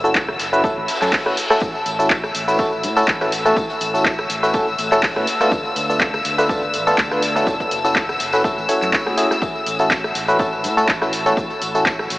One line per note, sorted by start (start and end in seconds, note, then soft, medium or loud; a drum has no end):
0.00 0.35 F#1 loud
0.00 1.60 E6 medium
0.04 0.22 A3 medium
0.04 0.22 C#4 medium
0.04 0.22 E4 medium
0.04 0.22 F#4 medium
0.04 0.22 A4 medium
0.04 cabasa soft
0.15 kick loud
0.15 snare loud
0.15 clap loud
0.15 tambourine medium
0.15 cabasa soft
0.28 cross-stick medium
0.39 0.77 F#1 medium
0.39 snare loud
0.39 open hi-hat loud
0.39 tambourine medium
0.39 cabasa medium
0.53 0.62 A3 medium
0.53 0.62 C#4 medium
0.53 0.62 E4 medium
0.53 0.62 F#4 medium
0.53 0.62 B4 loud
0.53 cabasa soft
0.64 0.76 A3 medium
0.64 0.76 C#4 medium
0.64 0.76 E4 medium
0.64 0.76 F#4 medium
0.64 0.76 A4 loud
0.64 kick loud
0.64 tambourine medium
0.64 reverse cymbal medium
0.64 cabasa soft
0.77 0.86 A1 loud
0.88 snare medium
0.88 open hi-hat loud
0.88 tambourine medium
0.88 cabasa medium
0.95 snare medium
0.95 tambourine medium
1.01 1.10 F#2 medium
1.01 1.12 A3 loud
1.01 1.12 C#4 medium
1.01 1.12 E4 medium
1.01 1.12 F#4 medium
1.01 1.12 A4 loud
1.01 snare loud
1.01 clap soft
1.01 tambourine medium
1.01 cabasa soft
1.07 snare medium
1.07 tambourine medium
1.12 kick loud
1.12 snare loud
1.12 clap loud
1.12 open hi-hat medium
1.12 cabasa soft
1.26 1.36 A3 medium
1.26 1.36 C#4 medium
1.26 1.36 E4 medium
1.26 1.36 F#4 medium
1.26 1.36 B4 medium
1.26 cross-stick medium
1.37 open hi-hat loud
1.37 tambourine medium
1.37 cabasa medium
1.50 1.68 A3 loud
1.50 1.68 C#4 medium
1.50 1.68 E4 medium
1.50 1.68 F#4 medium
1.50 1.68 A4 loud
1.50 cross-stick medium
1.50 snare medium
1.50 cabasa soft
1.61 1.72 A1 loud
1.61 12.19 E6 medium
1.61 kick loud
1.61 tambourine loud
1.61 tambourine medium
1.61 cabasa soft
1.75 tambourine soft
1.86 2.31 A1 medium
1.86 open hi-hat loud
1.86 tambourine medium
1.86 cabasa medium
1.99 2.17 A3 medium
1.99 2.17 C#4 medium
1.99 2.17 E4 medium
1.99 2.17 F#4 medium
1.99 2.17 A4 medium
1.99 tambourine medium
1.99 cabasa soft
2.10 kick loud
2.10 snare loud
2.10 clap loud
2.10 tambourine medium
2.10 cabasa soft
2.24 cross-stick medium
2.24 tambourine soft
2.34 2.85 A1 medium
2.34 open hi-hat loud
2.34 tambourine medium
2.34 cabasa medium
2.48 2.57 A3 medium
2.48 2.57 C#4 medium
2.48 2.57 E4 medium
2.48 2.57 F#4 medium
2.48 2.57 B4 loud
2.48 tambourine medium
2.48 cabasa soft
2.59 2.71 A3 medium
2.59 2.71 C#4 medium
2.59 2.71 E4 medium
2.59 2.71 F#4 medium
2.59 2.71 A4 loud
2.59 kick loud
2.59 tambourine medium
2.59 cabasa soft
2.73 tambourine soft
2.83 3.03 A2 medium
2.83 open hi-hat loud
2.83 tambourine medium
2.83 cabasa medium
2.97 3.07 A3 loud
2.97 3.07 C#4 medium
2.97 3.07 E4 medium
2.97 3.07 F#4 medium
2.97 3.07 A4 loud
2.97 tambourine medium
2.97 cabasa soft
3.07 3.53 A1 loud
3.07 kick loud
3.07 snare loud
3.07 clap loud
3.07 tambourine medium
3.07 cabasa soft
3.09 tambourine medium
3.21 3.31 A3 medium
3.21 3.31 C#4 medium
3.21 3.31 E4 medium
3.21 3.31 F#4 medium
3.21 3.31 B4 medium
3.21 cross-stick medium
3.21 snare medium
3.21 tambourine soft
3.32 open hi-hat loud
3.32 tambourine medium
3.32 cabasa medium
3.45 3.63 A3 medium
3.45 3.63 C#4 medium
3.45 3.63 E4 medium
3.45 3.63 F#4 medium
3.45 3.63 A4 loud
3.45 tambourine medium
3.45 high conga medium
3.45 cabasa soft
3.56 3.67 A1 loud
3.56 kick loud
3.56 tambourine medium
3.56 tambourine loud
3.56 cabasa soft
3.70 closed hi-hat soft
3.70 tambourine soft
3.80 4.26 A1 loud
3.80 open hi-hat loud
3.80 tambourine medium
3.80 cabasa medium
3.94 4.12 A3 medium
3.94 4.12 C#4 medium
3.94 4.12 E4 medium
3.94 4.12 F#4 medium
3.94 4.12 A4 medium
3.94 tambourine medium
3.94 cabasa soft
4.05 kick loud
4.05 snare loud
4.05 clap loud
4.05 tambourine medium
4.05 cabasa soft
4.18 cross-stick medium
4.18 tambourine soft
4.30 4.74 A1 medium
4.30 open hi-hat loud
4.30 tambourine medium
4.30 cabasa medium
4.43 4.52 A3 medium
4.43 4.52 C#4 medium
4.43 4.52 E4 medium
4.43 4.52 F#4 medium
4.43 4.52 B4 loud
4.43 snare medium
4.43 tambourine medium
4.43 cabasa soft
4.54 4.67 A3 medium
4.54 4.67 C#4 medium
4.54 4.67 E4 medium
4.54 4.67 F#4 medium
4.54 4.67 A4 loud
4.54 kick loud
4.54 tambourine medium
4.54 tambourine loud
4.54 cabasa soft
4.68 tambourine soft
4.78 4.89 A1 loud
4.78 open hi-hat loud
4.78 tambourine medium
4.78 cabasa medium
4.92 5.10 E1 loud
4.92 5.02 A3 loud
4.92 5.02 C#4 medium
4.92 5.02 E4 medium
4.92 5.02 F#4 medium
4.92 5.02 A4 loud
4.92 clap soft
4.92 tambourine medium
4.92 cabasa soft
5.03 kick loud
5.03 snare loud
5.03 clap loud
5.03 open hi-hat medium
5.03 tambourine medium
5.03 cabasa soft
5.16 5.25 A2 loud
5.16 5.26 A3 medium
5.16 5.26 C#4 medium
5.16 5.26 E4 medium
5.16 5.26 F#4 medium
5.16 5.26 B4 medium
5.16 cross-stick medium
5.16 tambourine soft
5.16 high conga medium
5.27 open hi-hat loud
5.27 tambourine medium
5.27 cabasa medium
5.40 5.58 A3 loud
5.40 5.58 B3 medium
5.40 5.58 D4 medium
5.40 5.58 F4 medium
5.40 5.58 A4 loud
5.40 cross-stick medium
5.40 snare medium
5.40 tambourine medium
5.40 high conga medium
5.40 cabasa soft
5.52 5.62 D2 loud
5.52 kick loud
5.52 tambourine medium
5.52 cabasa soft
5.65 tambourine soft
5.76 6.21 D2 loud
5.76 open hi-hat loud
5.76 tambourine medium
5.76 cabasa medium
5.89 6.07 A3 medium
5.89 6.07 B3 medium
5.89 6.07 D4 medium
5.89 6.07 F4 medium
5.89 6.07 A4 medium
5.89 tambourine medium
5.89 cabasa soft
6.00 kick loud
6.00 snare loud
6.00 clap loud
6.00 tambourine medium
6.00 cabasa soft
6.14 cross-stick medium
6.14 tambourine soft
6.25 6.75 D2 medium
6.25 open hi-hat loud
6.25 tambourine medium
6.25 cabasa medium
6.38 6.48 A3 medium
6.38 6.48 B3 medium
6.38 6.48 D4 medium
6.38 6.48 F4 medium
6.38 6.48 B4 loud
6.38 tambourine medium
6.38 cabasa soft
6.49 6.62 A3 loud
6.49 6.62 B3 medium
6.49 6.62 D4 medium
6.49 6.62 F4 medium
6.49 6.62 A4 loud
6.49 kick loud
6.49 tambourine medium
6.49 cabasa soft
6.62 tambourine soft
6.74 6.93 A1 medium
6.74 open hi-hat loud
6.74 tambourine medium
6.74 cabasa medium
6.87 6.97 A3 loud
6.87 6.97 B3 loud
6.87 6.97 D4 medium
6.87 6.97 F4 medium
6.87 6.97 A4 loud
6.87 tambourine medium
6.87 cabasa soft
6.98 7.43 D2 loud
6.98 kick loud
6.98 snare loud
6.98 clap loud
6.98 tambourine loud
6.98 tambourine medium
6.98 cabasa soft
7.11 7.22 A3 medium
7.11 7.22 B3 medium
7.11 7.22 D4 medium
7.11 7.22 F4 medium
7.11 7.22 B4 medium
7.11 cross-stick medium
7.11 snare soft
7.11 tambourine soft
7.22 open hi-hat loud
7.22 tambourine medium
7.22 cabasa medium
7.36 7.53 A3 loud
7.36 7.53 C#4 medium
7.36 7.53 E4 medium
7.36 7.53 F#4 medium
7.36 7.53 A4 loud
7.36 tambourine medium
7.36 high conga medium
7.36 cabasa soft
7.47 7.57 F#1 loud
7.47 kick loud
7.47 tambourine loud
7.47 tambourine medium
7.47 cabasa soft
7.59 kick medium
7.59 closed hi-hat soft
7.59 tambourine soft
7.71 8.16 F#1 medium
7.71 open hi-hat loud
7.71 tambourine medium
7.71 cabasa medium
7.84 8.02 A3 medium
7.84 8.02 C#4 medium
7.84 8.02 E4 medium
7.84 8.02 F#4 medium
7.84 8.02 A4 medium
7.84 tambourine medium
7.84 cabasa soft
7.96 kick loud
7.96 snare loud
7.96 clap loud
7.96 tambourine medium
7.96 cabasa soft
8.09 cross-stick medium
8.09 tambourine soft
8.19 8.57 F#1 medium
8.19 open hi-hat loud
8.19 tambourine medium
8.19 cabasa medium
8.33 8.43 A3 medium
8.33 8.43 C#4 medium
8.33 8.43 E4 medium
8.33 8.43 F#4 medium
8.33 8.43 B4 loud
8.33 snare medium
8.33 tambourine medium
8.33 cabasa soft
8.44 8.57 A3 medium
8.44 8.57 C#4 medium
8.44 8.57 E4 medium
8.44 8.57 F#4 medium
8.44 8.57 A4 loud
8.44 kick loud
8.44 tambourine medium
8.44 cabasa soft
8.58 8.66 A1 loud
8.58 tambourine soft
8.69 9.03 A3 medium
8.69 9.03 C#4 medium
8.69 9.03 E4 medium
8.69 9.03 F#4 medium
8.69 9.03 C#5 medium
8.69 open hi-hat loud
8.69 tambourine medium
8.69 cabasa medium
8.82 8.91 F#2 medium
8.82 clap soft
8.82 tambourine medium
8.82 cabasa soft
8.93 kick loud
8.93 snare loud
8.93 clap loud
8.93 open hi-hat medium
8.93 tambourine medium
8.93 cabasa soft
9.06 9.16 A3 medium
9.06 9.16 C#4 medium
9.06 9.16 E4 medium
9.06 9.16 F#4 medium
9.06 9.16 G#4 medium
9.06 cross-stick medium
9.06 tambourine soft
9.06 high conga loud
9.17 9.36 A3 medium
9.17 9.36 C#4 medium
9.17 9.36 E4 medium
9.17 9.36 F#4 medium
9.17 9.36 G#4 medium
9.17 open hi-hat loud
9.17 tambourine medium
9.17 cabasa medium
9.31 cross-stick medium
9.31 snare medium
9.31 tambourine medium
9.31 high conga medium
9.31 cabasa soft
9.42 9.52 A1 loud
9.42 kick loud
9.42 tambourine medium
9.42 cabasa soft
9.55 tambourine soft
9.66 10.11 A1 medium
9.66 open hi-hat loud
9.66 tambourine medium
9.66 cabasa medium
9.79 9.97 A3 medium
9.79 9.97 C#4 medium
9.79 9.97 E4 medium
9.79 9.97 F#4 medium
9.79 9.97 A4 medium
9.79 tambourine medium
9.79 cabasa soft
9.90 kick loud
9.90 snare loud
9.90 clap loud
9.90 tambourine medium
9.90 cabasa soft
10.04 cross-stick medium
10.04 tambourine soft
10.15 10.65 A1 medium
10.15 open hi-hat loud
10.15 tambourine medium
10.15 cabasa medium
10.28 10.38 A3 medium
10.28 10.38 C#4 medium
10.28 10.38 E4 medium
10.28 10.38 F#4 medium
10.28 10.38 B4 loud
10.28 tambourine medium
10.28 cabasa soft
10.39 10.52 A3 medium
10.39 10.52 C#4 medium
10.39 10.52 E4 medium
10.39 10.52 F#4 medium
10.39 10.52 A4 loud
10.39 kick loud
10.39 tambourine medium
10.39 cabasa soft
10.52 tambourine soft
10.64 10.83 A2 loud
10.64 open hi-hat loud
10.64 tambourine medium
10.64 cabasa medium
10.77 10.87 A3 loud
10.77 10.87 C#4 medium
10.77 10.87 E4 medium
10.77 10.87 F#4 medium
10.77 10.87 A4 loud
10.77 tambourine medium
10.77 cabasa soft
10.88 11.33 A1 loud
10.88 kick loud
10.88 snare loud
10.88 clap loud
10.88 tambourine medium
10.88 cabasa soft
11.01 11.12 A3 medium
11.01 11.12 C#4 medium
11.01 11.12 E4 medium
11.01 11.12 F#4 medium
11.01 11.12 B4 medium
11.01 cross-stick medium
11.01 snare medium
11.01 tambourine soft
11.13 open hi-hat loud
11.13 tambourine medium
11.13 cabasa medium
11.26 11.44 A3 medium
11.26 11.44 C#4 medium
11.26 11.44 E4 medium
11.26 11.44 F#4 medium
11.26 11.44 A4 loud
11.26 tambourine medium
11.26 high conga medium
11.26 cabasa soft
11.37 11.47 A1 loud
11.37 kick loud
11.37 tambourine medium
11.37 cabasa soft
11.50 closed hi-hat soft
11.50 tambourine soft
11.61 12.06 A1 loud
11.61 open hi-hat loud
11.61 tambourine medium
11.61 cabasa medium
11.75 11.92 A3 medium
11.75 11.92 C#4 medium
11.75 11.92 E4 medium
11.75 11.92 F#4 medium
11.75 11.92 A4 medium
11.75 tambourine medium
11.75 cabasa soft
11.85 kick loud
11.85 snare loud
11.85 clap loud
11.85 tambourine medium
11.85 cabasa soft
11.99 cross-stick medium
11.99 tambourine soft
12.10 12.19 A1 medium
12.10 open hi-hat loud
12.10 tambourine medium
12.10 cabasa medium